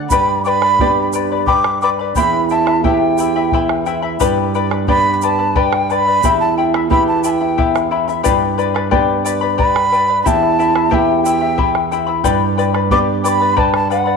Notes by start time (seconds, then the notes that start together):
Already playing: D5 F#5
0.09 G2 G4 B4 D5 G5 B5, bombo low, shaker
0.28 bombo rim
0.44 B4 D5 G5 B5 D6, shaker
0.62 B4 D5 B5, bombo rim
0.79 B3 D4 G4 B4 D5 G5 B5, bombo low
1.13 B4 D5 G5 B5, bombo rim, shaker
1.32 B4 D5 B5
1.47 G4 B4 D5 G5 B5 D6, bombo low
1.64 bombo rim
1.82 B4 D5 G5 B5 D6, bombo rim, shaker
1.99 B4 D5 B5
2.15 E2 E4 G4 E5 G5 B5, bombo low, shaker
2.33 bombo rim
2.49 E4 E5 G5 A5 B5, shaker
2.66 E4 E5 B5, bombo rim
2.84 B3 E4 G4 E5 G5 B5, bombo low
3.18 E4 E5 G5 B5, bombo rim, shaker
3.36 E4 E5 B5
3.52 E4 G4 E5 G5 B5, bombo low
3.69 bombo rim
3.86 E4 E5 G5 B5, bombo rim, shaker
4.02 E4 E5 B5
4.20 G2 G4 B4 D5 G5 B5, bombo low, shaker
4.38 bombo rim
4.55 B4 D5 G5 B5, shaker
4.71 B4 D5 B5, bombo rim
4.88 B3 D4 G4 B4 D5 G5 B5, bombo low
5.14 B5
5.22 B4 D5 G5 A5 B5, bombo rim, shaker
5.39 B4 D5 B5
5.55 G4 B4 D5 G5 B5, bombo low
5.73 bombo rim
5.90 B4 D5 G5 B5, bombo rim, shaker
6.06 B4 D5 B5
6.23 E2 E4 G4 E5 G5 B5, bombo low, shaker
6.41 A5
6.57 E4 E5 G5 B5
6.74 E4 E5 B5, bombo rim
6.90 B3 E4 G4 E5 G5 B5, bombo rim, bombo low
7.08 A5
7.24 E4 E5 G5 A5 B5, shaker
7.30 G5
7.41 E4 E5 B5
7.58 E4 G4 E5 G5 B5, bombo low
7.75 bombo rim, shaker
7.91 E4 E5 G5 B5
8.08 E4 E5 B5, shaker
8.23 G2 G4 B4 D5 G5 B5, bombo low, shaker
8.43 bombo rim
8.58 B4 D5 G5 B5, shaker
8.74 B4 D5 B5, bombo rim
8.91 B3 D4 G4 B4 D5 G5 B5, bombo low
9.24 B4 D5 G5 B5, bombo rim, shaker
9.41 B4 D5 B5
9.58 G4 B4 D5 G5 B5, bombo low
9.76 bombo rim
9.92 B4 D5 G5 B5, bombo rim, shaker
10.08 B4 D5 B5
10.23 E2 E4 G4 E5 G5 B5, bombo low, shaker
10.27 A5
10.43 bombo rim
10.59 E4 E5 G5 B5, shaker
10.75 E4 E5 B5, bombo rim
10.90 B3 E4 G4 E5 G5 A5 B5, bombo low
10.94 G5
11.23 E4 E5 G5 B5, bombo rim, shaker
11.41 E4 E5 B5
11.57 E4 G4 E5 G5 B5, bombo low
11.75 bombo rim
11.91 E4 E5 G5 B5, bombo rim, shaker
12.07 E4 E5 B5
12.24 G2 G4 B4 D5 G5 B5, bombo low, shaker
12.41 bombo rim
12.58 B4 D5 G5 B5, shaker
12.74 B4 D5 B5, bombo rim
12.91 B3 D4 G4 B4 D5 G5 B5 D6, bombo low
13.24 B4 D5 G5 B5 D6, bombo rim, shaker
13.28 B5
13.40 B4 D5 B5
13.56 G4 B4 D5 G5 A5 B5, bombo low
13.74 A5, bombo rim
13.90 B4 D5 F#5 G5 B5, bombo rim, shaker
14.06 B4 D5 B5